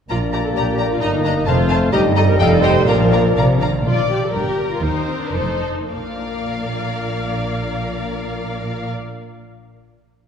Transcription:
0.09 A#1 A#2 A#3 D4 F4 D5 A#5
0.33 G4 D5 A#5
0.45 A4
0.55 A#1 A#2 G4 D5 A#5
0.78 D5 A#5
0.91 F4
1.01 G1 G2 D#4 D#5 A#5
1.24 D4 D#5 A#5
1.37 D#4
1.46 F1 F2 A3 C4 F4 C5 F5 A5
1.69 C5 F5 A5
1.92 G1 G2 G3 D#4 G4 D#5 A#5
2.16 A4 D#5 A#5
2.28 A#4
2.38 F1 F2 G3 D#4 A4 D#5 F5 G5
2.62 C5 D#5 F5 G5
2.86 A#1 A#2 F3 D4 A#4 D5 F5 A#5
3.12 D5 F5 A#5
3.36 A#1 C3 D5 F5 A#5
3.60 D3 D5 F5 A#5
3.75 D#3
3.85 A#1 A#2 F4 D5
4.10 G4
4.23 A4
4.33 G1 G2 G4 A#4
4.71 F4
4.81 D#2 D#4 C5
5.07 C4
5.21 D4
5.33 F1 F2 D#4 A4 C5
5.89 A#1 A#2 A#3 A#4 D5 F5

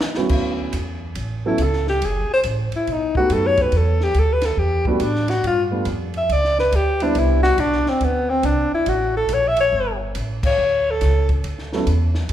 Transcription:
0.01 snare
0.15 D2 F#3 B3 C#4 E4 F#4, snare
0.29 D2, kick, crash
0.73 E2, kick, hi-hat pedal, ride
1.15 A1, kick, ride
1.46 F#3 B3 C#4 E4 A4
1.58 C#2, kick, hi-hat pedal, ride
1.63 A4
1.73 snare
1.87 G4, snare
2.02 F#1 G#4, kick, ride
2.29 muted upright bass stroke
2.33 C5
2.43 A1, kick, hi-hat pedal, ride
2.72 E4, muted upright bass stroke, ride
2.87 B1, kick, ride
2.92 D#4
3.15 A3 B3 D#4 F#4 G4, muted upright bass stroke, kick
3.30 F#2 A4, kick, hi-hat pedal, ride
3.47 C#5
3.57 kick, ride
3.62 B4
3.72 E2, kick, ride
3.77 A4
4.01 G4, snare
4.14 D2, kick, hi-hat pedal, ride
4.19 A4
4.33 B4
4.42 A4, snare, ride
4.57 E2 G4, kick
4.85 G3 A3 B3 D4 F#4, kick
5.00 A2 D4, kick, hi-hat pedal, ride
5.15 snare
5.28 F#4, snare, ride
5.44 G2 F4, kick, ride
5.71 G3 A3 B3 D4 F4
5.85 F2, kick, hi-hat pedal, ride
6.14 E5, ride
6.29 C#2 D5, kick, ride
6.44 snare
6.59 B4, snare
6.72 D2 G4, kick, hi-hat pedal, ride
7.00 G3 B3 C4 D4 E4, ride
7.15 C2 E4, kick, ride
7.43 F#4, snare
7.57 B1 D4, kick, hi-hat pedal, ride
7.72 snare
7.86 C4, muted upright bass stroke, snare
8.01 D2 B3, kick, ride
8.29 C4
8.43 C2 D4, kick, hi-hat pedal, ride
8.72 E4, muted upright bass stroke
8.86 A1 F#4, kick, ride
9.17 A4
9.29 A#1, kick, hi-hat pedal, ride
9.34 C#5
9.48 E5
9.57 C#5, ride
9.72 G1, kick
10.15 A1, kick, hi-hat pedal, ride
10.43 C#5, kick, crash
10.58 D2
10.91 A4
11.01 C#2, kick, snare, hi-hat pedal, ride
11.29 kick, ride
11.44 D2, kick, ride
11.59 snare
11.73 F#3 B3 C#4 E4 A4, snare
11.87 E2, kick, hi-hat pedal, ride
12.15 snare
12.29 F#2, kick, ride

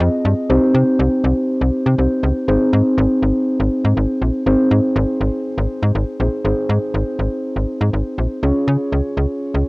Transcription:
0.00 F2 C4 F4 G#4 D#5
0.25 G2
0.50 C2 C4 D#4 G4 C5
0.74 C3
0.99 C2
1.24 C2
1.61 C2
1.86 C3
1.98 C2 C4 D#4 G4 C5
2.23 C#2
2.48 G#1 C4 D#4 G#4 C5
2.73 G#2
2.98 G#1
3.22 G#1
3.60 G#1
3.84 G#2
3.97 G#1
4.21 A#1
4.46 G#1 C4 D#4 G#4 C5
4.71 G#2
4.96 G#1
5.21 G#1
5.58 G#1
5.83 G#2
5.95 G#1
6.20 A#1 C4 D#4 G#4 C5
6.45 G#1 C4 D#4 G#4 C5
6.69 G#2
6.94 G#1
7.19 G#1
7.56 G#1
7.81 G#2
7.93 G#1
8.18 A#1
8.43 C#2 C#4 F4 G#4 C#5
8.68 C#3
8.92 C#2
9.17 C#2
9.54 C#2

